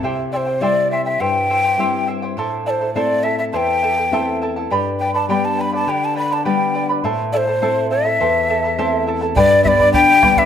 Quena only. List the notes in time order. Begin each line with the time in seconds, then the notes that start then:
0.32 D5
0.37 C5
0.62 D5
0.91 E5
1.05 E5
1.21 G5
2.66 C5 D5
2.94 D5
3.23 E5
3.39 E5
3.53 G5 A5
5.00 G5
5.15 A5
5.30 G5
5.45 A5
5.61 B5
5.76 A5
5.90 G5
6.05 A5
6.17 B5
6.33 A5
6.46 G5
7.33 D5
7.37 C5
7.91 E5
9.36 D5
9.64 D5 E5
9.93 G5
10.38 E5